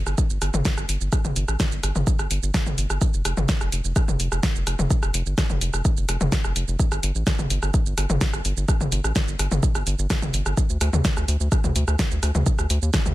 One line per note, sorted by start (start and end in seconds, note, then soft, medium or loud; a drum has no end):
0.07 0.15 G1 medium
0.07 cross-stick soft
0.07 shaker soft
0.18 kick loud
0.18 shaker medium
0.30 0.38 G1 medium
0.30 shaker soft
0.42 0.50 G1 loud
0.42 cross-stick soft
0.42 closed hi-hat loud
0.42 shaker medium
0.54 0.62 G1 medium
0.54 mid tom medium
0.54 shaker soft
0.65 kick loud
0.65 snare loud
0.65 shaker medium
0.77 0.85 G1 medium
0.77 cross-stick medium
0.77 shaker soft
0.89 0.97 G1 medium
0.89 closed hi-hat loud
0.89 shaker medium
1.01 1.09 G1 medium
1.01 shaker soft
1.12 kick loud
1.12 cross-stick medium
1.12 shaker medium
1.25 1.33 G1 medium
1.25 mid tom medium
1.25 shaker soft
1.36 1.45 G1 loud
1.36 closed hi-hat loud
1.36 shaker medium
1.48 1.56 A1 medium
1.48 cross-stick medium
1.48 shaker soft
1.60 kick loud
1.60 snare loud
1.60 shaker medium
1.72 1.80 G1 medium
1.72 shaker soft
1.83 1.92 G1 loud
1.83 cross-stick medium
1.83 closed hi-hat loud
1.83 shaker medium
1.96 2.04 G1 medium
1.96 mid tom medium
1.96 shaker soft
2.07 kick loud
2.07 shaker medium
2.19 2.27 G1 medium
2.19 cross-stick soft
2.19 shaker soft
2.31 2.39 G1 loud
2.31 closed hi-hat loud
2.31 shaker medium
2.43 2.51 G1 loud
2.43 shaker soft
2.54 kick loud
2.54 cross-stick medium
2.54 snare loud
2.54 shaker medium
2.66 2.74 G1 medium
2.66 mid tom medium
2.66 shaker soft
2.78 2.86 G1 loud
2.78 closed hi-hat loud
2.78 shaker medium
2.90 2.98 G1 medium
2.90 cross-stick medium
2.90 shaker soft
3.01 kick loud
3.01 shaker medium
3.14 3.22 F1 medium
3.14 shaker soft
3.25 3.34 F1 loud
3.25 cross-stick medium
3.25 closed hi-hat loud
3.25 shaker medium
3.37 3.45 G1 medium
3.37 mid tom medium
3.37 shaker soft
3.49 kick loud
3.49 snare loud
3.49 shaker medium
3.61 3.69 F1 medium
3.61 cross-stick medium
3.61 shaker soft
3.72 3.81 F1 loud
3.72 closed hi-hat loud
3.72 shaker medium
3.84 3.93 F1 medium
3.84 shaker soft
3.96 kick loud
3.96 cross-stick medium
3.96 shaker medium
4.08 4.16 F1 medium
4.08 mid tom medium
4.08 shaker soft
4.20 4.28 F1 loud
4.20 closed hi-hat loud
4.20 shaker medium
4.32 4.40 F1 loud
4.32 cross-stick medium
4.32 shaker soft
4.43 kick loud
4.43 snare loud
4.43 shaker medium
4.55 4.63 F1 medium
4.55 shaker soft
4.67 4.75 F1 loud
4.67 cross-stick medium
4.67 closed hi-hat loud
4.67 shaker medium
4.79 4.87 F1 medium
4.79 mid tom medium
4.79 shaker soft
4.90 kick loud
4.90 shaker medium
5.03 5.11 F1 medium
5.03 cross-stick medium
5.03 shaker soft
5.14 5.23 F1 loud
5.14 closed hi-hat loud
5.14 shaker medium
5.26 5.34 G1 medium
5.26 shaker soft
5.38 kick loud
5.38 cross-stick medium
5.38 snare loud
5.38 shaker medium
5.50 5.58 F1 medium
5.50 mid tom medium
5.50 shaker soft
5.61 5.70 F1 loud
5.61 closed hi-hat loud
5.61 shaker medium
5.73 5.82 F1 medium
5.73 cross-stick medium
5.73 shaker soft
5.85 kick loud
5.85 shaker medium
5.97 6.05 F1 medium
5.97 shaker soft
6.09 6.17 F1 loud
6.09 cross-stick medium
6.09 closed hi-hat loud
6.09 shaker medium
6.21 6.29 F1 medium
6.21 mid tom loud
6.21 shaker soft
6.32 kick loud
6.32 snare loud
6.32 shaker medium
6.44 6.52 F1 medium
6.44 cross-stick medium
6.44 shaker soft
6.56 6.64 F1 loud
6.56 closed hi-hat loud
6.56 shaker medium
6.68 6.76 F1 medium
6.68 shaker soft
6.79 kick loud
6.79 shaker medium
6.92 7.00 G1 medium
6.92 cross-stick medium
6.92 shaker soft
7.03 7.12 G1 loud
7.03 closed hi-hat loud
7.03 shaker medium
7.15 7.23 A1 medium
7.15 shaker soft
7.27 kick loud
7.27 cross-stick medium
7.27 snare loud
7.27 shaker medium
7.39 7.47 G1 medium
7.39 mid tom loud
7.39 shaker soft
7.50 7.59 G1 loud
7.50 closed hi-hat loud
7.50 shaker medium
7.62 7.71 G1 medium
7.62 cross-stick medium
7.62 shaker soft
7.74 kick loud
7.74 shaker medium
7.86 7.94 G1 medium
7.86 shaker soft
7.98 8.06 G1 loud
7.98 cross-stick medium
7.98 closed hi-hat loud
7.98 shaker medium
8.10 8.18 G1 medium
8.10 mid tom loud
8.10 shaker soft
8.21 kick loud
8.21 snare loud
8.21 shaker medium
8.33 8.41 G1 medium
8.33 cross-stick medium
8.33 shaker soft
8.45 8.53 G1 loud
8.45 closed hi-hat loud
8.45 shaker medium
8.57 8.65 G1 medium
8.57 shaker soft
8.68 kick loud
8.68 cross-stick medium
8.68 shaker medium
8.80 8.89 G1 medium
8.80 mid tom loud
8.80 shaker soft
8.92 9.01 G1 loud
8.92 closed hi-hat loud
8.92 shaker medium
9.04 9.12 A1 medium
9.04 cross-stick medium
9.04 shaker soft
9.16 kick loud
9.16 snare loud
9.16 shaker medium
9.28 9.36 G1 medium
9.28 shaker soft
9.39 9.48 G1 loud
9.39 cross-stick medium
9.39 closed hi-hat loud
9.39 shaker medium
9.51 9.59 G1 medium
9.51 mid tom medium
9.51 shaker soft
9.63 kick loud
9.63 shaker medium
9.75 9.83 G1 medium
9.75 cross-stick medium
9.75 shaker soft
9.87 9.95 G1 loud
9.87 closed hi-hat loud
9.87 shaker medium
9.99 10.07 G1 loud
9.99 shaker soft
10.10 kick loud
10.10 cross-stick medium
10.10 snare loud
10.10 shaker medium
10.22 10.30 G1 medium
10.22 mid tom loud
10.22 shaker soft
10.34 10.42 G1 loud
10.34 closed hi-hat loud
10.34 shaker medium
10.46 10.54 G1 medium
10.46 cross-stick medium
10.46 shaker soft
10.57 kick loud
10.57 shaker medium
10.70 10.78 D2 medium
10.70 shaker soft
10.81 10.90 D2 loud
10.81 cross-stick medium
10.81 closed hi-hat loud
10.81 shaker medium
10.93 11.01 D#2 medium
10.93 mid tom medium
10.93 shaker soft
11.05 kick loud
11.05 snare loud
11.05 shaker medium
11.17 11.25 D2 medium
11.17 cross-stick medium
11.17 shaker soft
11.28 11.37 D2 loud
11.28 closed hi-hat loud
11.28 shaker medium
11.40 11.48 D2 medium
11.40 shaker soft
11.52 kick loud
11.52 cross-stick medium
11.52 shaker medium
11.64 11.72 D2 medium
11.64 mid tom loud
11.64 shaker soft
11.75 11.84 D2 loud
11.75 closed hi-hat loud
11.75 shaker medium
11.88 11.96 D2 loud
11.88 cross-stick medium
11.88 shaker soft
11.99 kick loud
11.99 snare loud
11.99 shaker medium
12.11 12.19 D2 medium
12.11 shaker soft
12.23 12.31 D2 loud
12.23 cross-stick medium
12.23 closed hi-hat loud
12.23 shaker medium
12.35 12.43 D2 medium
12.35 mid tom loud
12.35 shaker soft
12.46 kick loud
12.46 shaker medium
12.59 12.67 D2 medium
12.59 cross-stick medium
12.59 shaker soft
12.70 12.79 D2 loud
12.70 closed hi-hat loud
12.70 shaker medium
12.82 12.90 D#2 medium
12.82 shaker soft
12.94 kick loud
12.94 cross-stick soft
12.94 snare loud
12.94 shaker medium
13.06 13.14 D2 medium
13.06 mid tom medium
13.06 shaker soft